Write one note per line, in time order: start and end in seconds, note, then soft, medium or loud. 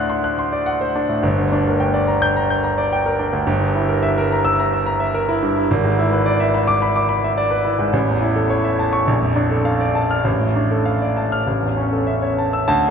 0.00 1.20 D2 medium
0.00 1.09 A2 soft
0.00 0.96 D4 medium
0.00 0.81 C5 medium
0.00 0.53 D5 medium
0.00 0.66 F#5 medium
0.00 0.10 C6 medium
0.00 0.19 F#6 medium
0.10 0.33 C6 medium
0.24 0.47 F#6 medium
0.39 0.62 C6 medium
0.53 0.76 D5 medium
0.66 0.90 F#5 medium
0.81 1.04 C5 medium
0.96 1.18 D4 medium
1.09 1.23 A2 soft
1.23 3.43 G1 medium
1.38 1.61 D2 medium
1.52 1.75 D4 medium
1.67 1.89 A#4 medium
1.80 2.03 G5 medium
1.94 2.17 D5 medium
2.08 2.31 A#5 medium
2.22 2.45 G6 medium
2.37 2.59 A#5 medium
2.50 2.73 G6 medium
2.64 2.87 A#5 medium
2.78 3.00 D5 medium
2.93 3.15 G5 medium
3.06 3.28 A#4 medium
3.19 3.42 D4 medium
3.33 3.48 D2 medium
3.47 5.65 G1 medium
3.61 3.84 G2 medium
3.75 3.98 E4 medium
3.89 4.12 A#4 medium
4.03 4.26 E5 medium
4.18 4.40 A#4 medium
4.32 4.54 A#5 medium
4.45 4.67 E6 loud
4.60 4.82 A#5 medium
4.73 4.96 E6 medium
4.86 5.09 A#5 medium
5.00 5.23 E5 medium
5.14 5.37 A#4 medium
5.29 5.51 E4 medium
5.42 5.65 G2 medium
5.57 5.71 E4 medium
5.71 7.90 G#1 medium
5.84 6.07 G#2 medium
5.99 6.21 E4 medium
6.12 6.35 B4 medium
6.26 6.49 D5 medium
6.40 6.63 E5 medium
6.55 6.77 B5 medium
6.67 6.90 D6 loud
6.82 7.04 B5 medium
6.96 7.18 D6 medium
7.09 7.32 B5 medium
7.24 7.46 E5 medium
7.38 7.60 D5 medium
7.51 7.74 B4 medium
7.65 7.88 E4 medium
7.79 7.94 G#2 medium
7.93 9.05 A1 medium
8.08 8.31 E2 medium
8.21 8.45 E4 medium
8.36 8.59 A4 medium
8.50 8.74 C#5 medium
8.64 8.88 E5 medium
8.79 9.02 A5 medium
8.93 9.08 C#6 medium
9.07 10.23 A#1 medium
9.22 9.46 F2 medium
9.36 9.60 D4 medium
9.51 9.75 A4 medium
9.65 9.90 F5 medium
9.81 10.05 D5 medium
9.95 10.20 A5 medium
10.11 10.26 F6 medium
10.24 11.43 A1 medium
10.40 10.65 A2 soft
10.56 10.81 D4 medium
10.71 10.96 A4 soft
10.86 11.11 F5 medium
11.02 11.26 D5 medium
11.17 11.41 A5 medium
11.32 11.47 F6 medium
11.47 12.64 A1 medium
11.62 11.87 E2 soft
11.77 12.02 C#4 medium
11.93 12.17 A4 soft
12.07 12.32 E5 medium
12.22 12.47 C#5 medium
12.38 12.62 A5 medium
12.53 12.68 E6 medium
12.68 12.90 D2 medium
12.68 12.90 A5 medium